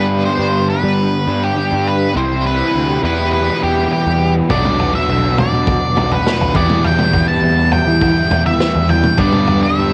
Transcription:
0.00 0.26 G2 loud
0.00 1.25 G2 medium
0.00 1.25 D3 medium
0.00 1.25 G3 medium
0.00 1.27 B3 loud
0.00 1.26 D4 medium
0.00 1.25 G4 loud
0.00 0.25 B4 medium
0.25 0.69 C5 medium
0.39 0.73 G2 medium
0.69 1.45 B4 loud
0.83 1.06 G3 medium
1.26 1.50 G2 medium
1.26 1.54 G2 medium
1.26 1.55 D3 medium
1.26 1.55 G3 medium
1.26 1.57 B3 medium
1.26 1.54 D4 medium
1.26 1.54 G4 medium
1.43 1.88 G4 medium
1.56 2.13 G2 medium
1.56 2.13 D3 medium
1.56 2.13 G3 medium
1.56 2.16 B3 medium
1.56 2.14 D4 medium
1.56 2.14 G4 medium
1.72 2.06 G2 medium
1.87 2.16 B4 medium
2.15 2.61 C2 loud
2.15 3.01 C3 medium
2.15 3.02 E3 medium
2.15 3.02 G3 medium
2.15 3.02 C4 loud
2.15 3.02 E4 medium
2.15 3.02 G4 loud
2.15 2.43 C5 medium
2.46 3.00 B4 medium
2.74 2.97 D2 medium
3.02 4.48 E2 medium
3.02 3.49 E2 medium
3.02 4.48 B2 medium
3.02 4.48 E3 medium
3.02 4.48 G3 loud
3.02 4.51 B3 medium
3.02 4.49 E4 medium
3.02 4.49 G4 medium
3.02 3.32 B4 medium
3.33 3.60 B4 medium
3.63 3.85 E2 medium
3.63 3.92 G4 medium
3.93 4.33 G4 medium
4.06 4.40 E2 medium
4.49 4.95 B1 loud
4.49 5.94 B2 medium
4.49 5.95 F#3 medium
4.49 5.96 B3 medium
4.49 5.96 D4 medium
4.49 5.94 F#4 medium
4.49 4.95 D5 medium
4.49 kick loud
4.49 floor tom medium
4.65 mid tom medium
4.80 floor tom medium
4.95 5.39 E5 medium
5.09 5.43 B1 medium
5.38 6.14 D5 loud
5.38 floor tom medium
5.38 mid tom medium
5.53 5.76 B2 medium
5.67 kick loud
5.67 floor tom medium
5.95 6.20 B1 medium
5.95 6.23 B2 medium
5.95 6.23 F#3 medium
5.95 6.25 B3 medium
5.95 6.25 D4 medium
5.95 6.24 F#4 medium
5.95 floor tom medium
5.95 mid tom medium
6.11 6.57 B4 medium
6.11 floor tom medium
6.24 6.53 B2 medium
6.24 6.53 F#3 medium
6.24 6.54 B3 medium
6.24 6.55 D4 medium
6.24 6.54 F#4 medium
6.24 snare medium
6.41 6.53 B1 medium
6.41 floor tom medium
6.53 7.99 E2 medium
6.53 7.23 E2 medium
6.53 7.99 B2 medium
6.53 8.01 E3 medium
6.53 8.01 G3 medium
6.53 9.20 B3 loud
6.53 8.02 E4 loud
6.53 8.02 G4 loud
6.53 6.86 D5 loud
6.53 kick loud
6.53 floor tom medium
6.70 mid tom medium
6.84 7.25 G5 loud
6.84 floor tom medium
6.99 mid tom medium
7.13 kick medium
7.13 floor tom medium
7.28 7.72 A5 medium
7.43 7.77 E2 medium
7.72 8.42 G5 loud
7.72 floor tom medium
7.87 8.10 E3 medium
8.00 8.29 E2 medium
8.00 8.29 B2 medium
8.00 8.30 E3 medium
8.00 8.30 G3 medium
8.00 8.30 E4 medium
8.00 8.29 G4 medium
8.00 kick loud
8.00 floor tom medium
8.29 8.54 E2 loud
8.29 8.88 E2 medium
8.29 8.88 B2 medium
8.29 9.18 E3 medium
8.29 9.18 G3 medium
8.29 9.19 E4 medium
8.29 9.19 G4 medium
8.29 floor tom medium
8.29 mid tom medium
8.46 8.91 E5 loud
8.46 floor tom medium
8.60 snare medium
8.74 9.10 E2 medium
8.74 floor tom medium
8.89 9.20 G5 loud
8.89 floor tom medium
9.04 mid tom medium
9.17 9.93 G2 medium
9.17 9.64 G2 loud
9.17 9.93 D3 medium
9.17 9.93 G3 medium
9.17 9.93 B3 medium
9.17 9.93 D4 medium
9.17 9.93 G4 medium
9.17 9.63 D5 loud
9.17 kick loud
9.17 floor tom medium
9.33 mid tom medium
9.47 floor tom medium
9.63 9.93 E5 medium
9.79 9.93 G2 medium

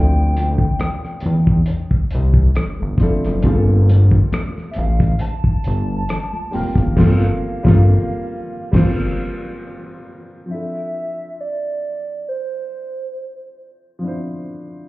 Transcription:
0.00 0.66 D2 loud
0.00 2.98 F3 medium
0.00 2.99 C4 medium
0.00 3.01 D4 medium
0.00 3.02 E4 medium
0.00 3.46 G4 medium
0.00 1.45 A4 medium
0.00 1.49 G5 loud
0.16 muted conga soft
0.37 closed hi-hat medium
0.37 high conga medium
0.58 kick medium
0.80 cross-stick loud
0.80 closed hi-hat medium
0.80 muted conga soft
0.80 high conga medium
1.05 cross-stick soft
1.20 closed hi-hat medium
1.20 high conga medium
1.20 low conga medium
1.26 1.62 E2 medium
1.47 kick medium
1.66 closed hi-hat medium
1.90 2.00 C2 soft
1.90 kick medium
1.90 muted conga soft
2.11 closed hi-hat medium
2.15 2.51 C2 medium
2.34 kick medium
2.55 2.67 G1 soft
2.55 cross-stick medium
2.55 closed hi-hat medium
2.80 2.98 G1 medium
2.80 high conga soft
2.98 3.37 F3 medium
2.98 3.38 C4 medium
2.98 3.39 D4 medium
2.98 3.39 E4 medium
2.98 kick medium
2.98 closed hi-hat medium
3.02 3.40 A4 medium
3.02 high conga medium
3.24 3.42 F#1 medium
3.24 cross-stick soft
3.24 closed hi-hat soft
3.42 4.19 G1 loud
3.42 4.96 G3 medium
3.42 4.96 A#3 medium
3.42 4.97 C4 medium
3.42 4.98 F4 medium
3.42 kick loud
3.42 closed hi-hat medium
3.42 low conga medium
3.47 3.52 G#4 medium
3.53 5.01 A4 medium
3.68 muted conga soft
3.89 closed hi-hat medium
3.89 high conga medium
4.11 kick medium
4.32 cross-stick loud
4.32 closed hi-hat medium
4.32 muted conga soft
4.32 high conga medium
4.58 cross-stick soft
4.58 muted conga soft
4.71 4.79 E5 medium
4.71 closed hi-hat medium
4.76 5.15 A1 medium
4.76 5.21 F5 medium
4.76 high conga medium
4.76 low conga medium
5.00 kick medium
5.00 closed hi-hat soft
5.19 6.55 A5 loud
5.19 closed hi-hat medium
5.19 muted conga soft
5.44 5.53 G1 soft
5.44 kick medium
5.64 6.03 G1 medium
5.64 closed hi-hat medium
6.09 cross-stick medium
6.09 closed hi-hat medium
6.33 high conga medium
6.51 6.64 E1 soft
6.51 6.90 G3 medium
6.51 6.91 A#3 medium
6.51 6.91 C4 medium
6.51 6.92 F4 medium
6.51 6.70 G5 loud
6.51 open hi-hat soft
6.51 high conga medium
6.55 6.92 A#4 medium
6.70 6.80 G5 medium
6.76 6.93 E1 medium
6.76 10.07 F5 medium
6.76 kick medium
6.76 cross-stick soft
6.76 closed hi-hat soft
6.96 7.28 G1 loud
6.96 7.27 G3 medium
6.96 7.27 A#3 medium
6.96 7.28 C4 loud
6.96 7.29 F4 medium
6.96 7.29 A4 medium
6.96 kick medium
6.96 snare medium
6.96 crash medium
7.63 7.95 G1 loud
7.63 7.93 G3 medium
7.63 7.94 A#3 medium
7.63 7.94 C4 medium
7.63 7.95 F4 loud
7.63 kick loud
7.63 snare loud
7.67 7.96 A4 medium
8.72 9.04 G1 loud
8.72 9.03 G3 medium
8.72 9.03 A#3 medium
8.72 9.04 C4 medium
8.72 9.05 F4 medium
8.72 kick medium
8.72 snare medium
8.72 crash medium
8.76 9.05 C5 medium
10.46 13.97 F3 soft
10.46 13.98 C4 soft
10.50 13.99 D4 soft
10.50 14.00 E4 soft
10.50 11.42 E5 loud
10.54 14.01 A4 soft
11.40 12.30 D5 medium
12.29 13.60 C5 medium
13.99 14.88 F3 medium
13.99 14.88 C4 soft
14.03 14.88 D4 medium
14.03 14.88 E4 medium
14.08 14.88 C5 medium

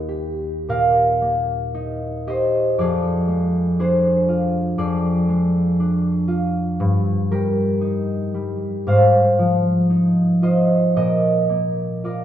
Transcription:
0.00 2.33 D#2 medium
0.00 1.20 A#3 soft
0.00 1.73 D#4 soft
0.00 0.68 A#4 medium
0.09 2.26 G4 soft
0.68 2.81 A#2 soft
0.68 2.82 A#4 medium
0.68 3.33 F5 medium
1.22 2.80 A#3 soft
1.74 2.80 D#4 soft
2.27 2.81 G4 soft
2.27 2.82 C5 soft
2.27 2.81 D#5 medium
2.78 4.77 F2 medium
2.78 3.79 G#4 medium
2.78 4.77 D5 medium
3.28 5.27 G#3 soft
3.79 5.79 D4 medium
3.79 4.78 G#4 medium
3.79 5.51 C5 medium
4.28 6.27 F4 soft
4.78 6.85 F2 medium
4.78 6.85 G#4 medium
4.78 6.85 D5 medium
5.29 6.85 G#3 medium
5.80 6.85 D4 medium
6.28 6.84 F4 soft
6.80 8.93 G2 medium
7.31 8.33 G3 soft
7.31 8.93 G4 medium
7.31 8.93 A#4 medium
7.81 9.89 D#4 medium
8.34 8.92 G3 soft
8.87 11.00 G#2 medium
8.87 10.42 C5 medium
8.87 12.24 F5 medium
9.39 12.24 F3 soft
9.90 11.00 D#4 soft
10.42 12.03 F4 soft
10.42 11.01 C5 medium
10.42 10.95 D#5 medium
10.96 12.24 A#2 medium
10.96 12.04 A#4 medium
10.96 12.24 D#5 medium
11.49 12.24 A#3 soft
12.04 12.24 F4 soft
12.04 12.24 A#4 soft
12.04 12.24 D5 soft

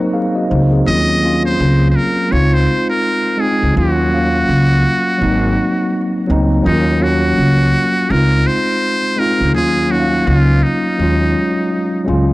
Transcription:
0.00 0.30 F#3 medium
0.00 0.31 A#3 medium
0.00 0.73 C4 medium
0.00 0.51 D#4 loud
0.00 0.11 F#4 medium
0.00 0.88 A#4 medium
0.00 0.13 C5 medium
0.13 0.35 G#4 medium
0.13 0.34 F5 medium
0.35 0.49 F#4 medium
0.35 0.49 D#5 medium
0.50 0.85 C#2 medium
0.50 0.71 D#4 medium
0.50 0.71 C5 medium
0.72 1.07 C4 medium
0.72 1.06 G#4 medium
0.85 1.55 D#2 loud
0.85 1.14 F#3 medium
0.85 1.15 A#3 medium
0.85 1.16 C#4 medium
0.85 1.41 D#5 loud
0.90 1.17 F4 medium
1.21 2.29 F#3 medium
1.21 2.29 A#3 medium
1.21 2.30 C#4 medium
1.26 2.31 F4 medium
1.45 1.87 C5 loud
1.60 1.93 C#2 loud
1.90 1.97 C5 medium
1.96 2.33 A#4 medium
2.29 2.66 C#2 loud
2.29 3.19 G#3 medium
2.29 3.20 C4 medium
2.29 3.21 D#4 medium
2.29 2.55 C#5 medium
2.34 3.22 F4 medium
2.54 2.89 C5 loud
2.90 3.42 A#4 medium
3.37 3.67 G#3 medium
3.37 3.68 C4 medium
3.37 3.69 D#4 medium
3.37 3.76 G#4 medium
3.42 3.69 G#4 medium
3.62 3.75 C#2 medium
3.73 4.44 D#2 loud
3.73 4.03 F#3 medium
3.73 4.04 A#3 medium
3.73 4.04 C#4 medium
3.77 4.05 F4 medium
3.77 6.25 F#4 medium
4.09 5.17 F#3 medium
4.09 5.18 A#3 medium
4.09 5.19 C#4 medium
4.14 5.20 F5 medium
4.49 4.82 C#2 loud
5.18 5.55 G#1 loud
5.18 6.09 F#3 medium
5.18 6.09 A#3 medium
5.18 6.10 C4 medium
5.23 6.11 D#4 medium
6.27 6.63 C#2 loud
6.27 6.56 F#3 medium
6.27 6.57 A#3 medium
6.27 6.58 C4 medium
6.31 6.59 D#4 loud
6.62 7.33 D#2 loud
6.62 6.92 F#3 medium
6.62 6.93 A#3 medium
6.62 6.94 C#4 medium
6.67 7.04 D#4 medium
6.67 6.94 F4 medium
6.98 8.06 F#3 medium
6.98 8.07 A#3 medium
6.98 8.08 C#4 medium
7.03 8.09 F#4 medium
7.03 8.12 F#4 loud
7.38 7.72 C#2 loud
8.09 8.44 C#2 loud
8.09 8.98 G#3 medium
8.09 8.99 C4 medium
8.09 9.00 D#4 medium
8.09 8.48 A#4 loud
8.13 9.01 F4 medium
8.47 9.21 C5 loud
9.16 9.45 G#3 medium
9.16 9.46 C4 medium
9.16 9.47 D#4 medium
9.16 9.54 A#4 medium
9.21 9.48 F4 medium
9.40 9.55 C#2 medium
9.53 10.23 D#2 loud
9.53 9.82 F#3 medium
9.53 9.83 A#3 medium
9.53 9.83 C#4 medium
9.53 9.92 G#4 loud
9.58 9.84 F4 medium
9.88 10.96 F#3 medium
9.88 10.97 A#3 medium
9.88 10.98 C#4 medium
9.88 10.29 F#4 medium
9.93 9.99 D#4 medium
10.00 11.02 F5 medium
10.27 10.61 C#2 loud
10.27 10.65 F4 medium
10.63 12.07 D#4 medium
10.98 11.33 D#2 loud
10.98 11.88 F#3 medium
10.98 11.88 G#3 medium
10.98 11.89 C#4 medium
11.03 11.90 F4 medium
12.04 12.33 C#2 medium
12.04 12.33 F#3 medium
12.04 12.33 G#3 medium
12.04 12.33 C#4 medium
12.09 12.33 F4 loud

